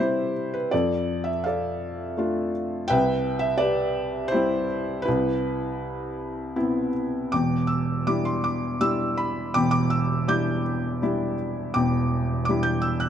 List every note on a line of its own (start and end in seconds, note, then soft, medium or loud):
0.00 0.68 C3 medium
0.00 0.70 G3 soft
0.00 0.70 C4 soft
0.00 0.68 E4 medium
0.00 0.74 G4 medium
0.00 0.54 B4 medium
0.00 0.55 C5 medium
0.00 0.71 D5 medium
0.00 0.74 E5 medium
0.00 0.74 G5 medium
0.54 0.72 B4 medium
0.71 2.87 F2 medium
0.71 1.44 A4 medium
0.71 1.28 D5 medium
1.24 1.44 E5 medium
1.44 2.50 A4 medium
1.44 2.51 D5 medium
1.44 2.49 F5 medium
2.17 2.88 A3 medium
2.17 2.88 D4 soft
2.17 2.89 F4 medium
2.88 5.02 C2 medium
2.88 3.59 B4 medium
2.88 3.38 E5 medium
2.88 3.45 G5 loud
3.39 3.60 E5 medium
3.58 4.30 G4 medium
3.58 4.65 B4 medium
3.58 4.33 D5 loud
4.28 4.34 E4 medium
4.28 5.02 G4 medium
4.28 5.00 C5 loud
4.34 5.05 G3 medium
4.34 5.05 C4 medium
4.34 5.04 E4 medium
5.02 6.55 E4 medium
5.02 6.90 G4 medium
5.02 6.89 B4 medium
5.08 7.30 C2 medium
6.56 7.30 B3 medium
6.56 7.31 C4 medium
6.56 7.30 E4 medium
7.32 9.51 E1 medium
7.32 9.52 E2 medium
7.32 8.41 G5 medium
7.32 7.67 D6 medium
7.67 8.07 E6 medium
8.07 8.79 G3 soft
8.07 8.79 D4 soft
8.07 8.79 E4 medium
8.07 8.26 D6 medium
8.25 8.45 C6 medium
8.44 8.82 D6 medium
8.81 9.53 G3 soft
8.81 9.53 D4 soft
8.81 9.53 E4 medium
8.81 9.19 E6 loud
9.18 9.52 B5 medium
9.54 11.71 E1 medium
9.54 11.71 E2 medium
9.54 10.62 G5 medium
9.54 9.70 D6 loud
9.71 9.90 D6 medium
9.90 10.29 E6 medium
10.28 10.99 G3 soft
10.28 10.99 D4 soft
10.28 11.00 E4 medium
10.28 11.34 D6 medium
10.28 11.34 G6 medium
11.02 11.72 G3 medium
11.02 11.72 D4 medium
11.02 11.73 E4 medium
11.74 13.09 E1 medium
11.74 13.09 E2 medium
11.74 12.79 G5 medium
11.74 12.44 D6 medium
12.45 13.09 G3 medium
12.45 12.63 D6 medium
12.49 13.09 D4 soft
12.49 13.09 E4 medium
12.63 12.83 G6 medium
12.82 13.01 E6 medium
13.00 13.09 F#6 medium